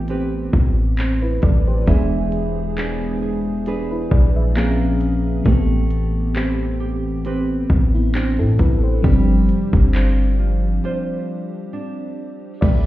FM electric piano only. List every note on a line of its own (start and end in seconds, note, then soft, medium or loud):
0.00 1.83 E3 medium
0.00 1.83 A3 medium
0.00 1.84 B3 medium
0.00 1.84 C4 medium
0.00 1.90 F4 medium
0.00 0.95 G4 medium
1.22 1.42 E4 medium
1.22 1.42 B4 medium
1.43 1.66 A4 medium
1.43 1.66 D5 medium
1.67 2.10 G4 medium
1.67 2.10 C5 medium
1.86 4.51 E3 medium
1.86 4.52 G#3 medium
1.86 4.53 B3 medium
1.86 3.64 D4 medium
1.90 3.64 G#4 medium
3.67 3.90 D4 medium
3.67 3.90 G#4 medium
3.91 4.11 E4 medium
3.91 4.11 B4 medium
4.12 4.35 G#4 medium
4.12 4.35 D5 medium
4.36 4.79 B4 medium
4.36 4.78 E5 medium
4.55 5.45 F3 medium
4.55 5.46 A#3 medium
4.55 5.46 C4 medium
4.55 5.46 C#4 medium
4.55 5.47 G#4 medium
5.44 8.54 E3 medium
5.44 8.55 A3 medium
5.44 7.66 B3 medium
5.44 7.66 C4 medium
5.48 7.67 G4 medium
7.95 8.14 B3 medium
7.95 8.14 E4 medium
8.15 8.38 D4 medium
8.15 8.38 G4 medium
8.39 8.59 E4 medium
8.39 8.58 A4 medium
8.60 8.83 E4 medium
8.60 8.82 B4 medium
8.84 9.05 G4 medium
8.84 9.26 C5 medium
9.02 12.57 F3 medium
9.02 12.58 G3 medium
9.02 12.58 C4 medium
9.02 12.59 D4 medium
9.06 12.59 G4 medium
12.61 12.86 G4 medium
12.61 12.86 D5 loud